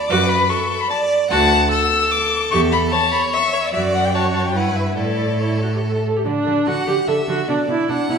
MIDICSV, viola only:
0, 0, Header, 1, 2, 480
1, 0, Start_track
1, 0, Key_signature, 2, "major"
1, 0, Tempo, 403769
1, 124, Time_signature, 3, 2, 24, 8
1, 4924, Tempo, 423729
1, 7324, Tempo, 407056
1, 9588, End_track
2, 0, Start_track
2, 0, Title_t, "Viola"
2, 0, Program_c, 0, 41
2, 121, Note_on_c, 0, 66, 86
2, 344, Note_off_c, 0, 66, 0
2, 1559, Note_on_c, 0, 66, 92
2, 1777, Note_off_c, 0, 66, 0
2, 2989, Note_on_c, 0, 67, 88
2, 3213, Note_off_c, 0, 67, 0
2, 4435, Note_on_c, 0, 66, 86
2, 4888, Note_off_c, 0, 66, 0
2, 4922, Note_on_c, 0, 66, 76
2, 5379, Note_off_c, 0, 66, 0
2, 5386, Note_on_c, 0, 64, 70
2, 5857, Note_off_c, 0, 64, 0
2, 5864, Note_on_c, 0, 64, 62
2, 6345, Note_off_c, 0, 64, 0
2, 6362, Note_on_c, 0, 64, 68
2, 6587, Note_off_c, 0, 64, 0
2, 6603, Note_on_c, 0, 66, 62
2, 6651, Note_off_c, 0, 66, 0
2, 6730, Note_on_c, 0, 67, 58
2, 6839, Note_off_c, 0, 67, 0
2, 6846, Note_on_c, 0, 69, 74
2, 7081, Note_off_c, 0, 69, 0
2, 7087, Note_on_c, 0, 69, 70
2, 7218, Note_on_c, 0, 67, 59
2, 7235, Note_off_c, 0, 69, 0
2, 7322, Note_off_c, 0, 67, 0
2, 7329, Note_on_c, 0, 62, 85
2, 7811, Note_on_c, 0, 66, 84
2, 7829, Note_off_c, 0, 62, 0
2, 8039, Note_off_c, 0, 66, 0
2, 8047, Note_on_c, 0, 67, 76
2, 8141, Note_off_c, 0, 67, 0
2, 8290, Note_on_c, 0, 69, 79
2, 8384, Note_off_c, 0, 69, 0
2, 8537, Note_on_c, 0, 66, 79
2, 8769, Note_off_c, 0, 66, 0
2, 8773, Note_on_c, 0, 62, 79
2, 8868, Note_off_c, 0, 62, 0
2, 9017, Note_on_c, 0, 64, 79
2, 9252, Note_on_c, 0, 62, 75
2, 9269, Note_off_c, 0, 64, 0
2, 9480, Note_off_c, 0, 62, 0
2, 9488, Note_on_c, 0, 64, 77
2, 9582, Note_off_c, 0, 64, 0
2, 9588, End_track
0, 0, End_of_file